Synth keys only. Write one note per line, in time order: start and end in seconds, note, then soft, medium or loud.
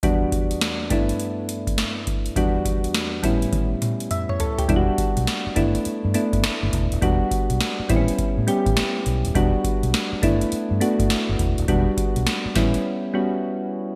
0.03 0.90 E2 medium
0.03 0.91 G3 medium
0.03 0.90 B3 medium
0.03 0.90 D4 medium
0.03 0.91 F#4 medium
0.90 2.33 G2 medium
0.90 2.33 A3 medium
0.90 2.34 B3 medium
0.90 2.34 D4 medium
0.90 2.34 E4 medium
2.36 3.24 E2 medium
2.36 3.22 G3 medium
2.36 3.22 B3 medium
2.36 3.24 D4 medium
2.36 3.24 F#4 medium
3.23 4.66 A2 medium
3.23 4.66 G3 medium
3.23 4.66 B3 medium
3.23 4.67 C#4 medium
3.23 4.67 E4 medium
4.11 4.65 E5 medium
4.29 4.39 C#5 medium
4.40 4.58 A4 medium
4.58 4.86 G4 medium
4.68 5.50 G3 medium
4.68 5.51 B3 medium
4.68 5.51 D4 medium
4.68 4.78 E4 medium
4.76 5.54 F#4 medium
5.56 6.06 A3 medium
5.56 6.06 B3 medium
5.56 6.06 D4 medium
5.56 6.07 E4 medium
6.14 6.74 A3 medium
6.14 6.74 B3 medium
6.14 6.75 D4 medium
6.14 6.75 E4 medium
7.02 7.83 G3 medium
7.02 7.84 B3 medium
7.02 7.84 D4 medium
7.02 7.84 F#4 loud
7.89 8.39 G3 medium
7.89 8.39 B3 medium
7.89 7.98 C4 medium
7.89 8.40 E4 medium
7.96 8.43 C#4 medium
8.47 9.07 G3 medium
8.47 9.07 B3 medium
8.47 9.08 C#4 medium
8.47 9.08 G4 medium
9.35 10.17 G3 medium
9.35 10.17 B3 medium
9.35 10.17 D4 medium
9.35 10.17 F#4 loud
10.22 10.72 A3 medium
10.22 10.73 B3 medium
10.22 10.73 D4 medium
10.22 10.73 E4 loud
10.81 11.40 A3 medium
10.81 11.41 B3 medium
10.81 11.41 D4 medium
10.81 11.41 F#4 medium
11.68 12.50 G3 medium
11.68 12.50 B3 medium
11.68 12.50 D4 medium
11.68 12.50 F#4 medium
12.55 13.05 G3 medium
12.55 13.06 B3 medium
12.55 13.06 C#4 medium
12.55 13.06 E4 medium
13.14 13.74 G3 medium
13.14 13.74 B3 medium
13.14 13.74 C#4 medium
13.14 13.74 F#4 medium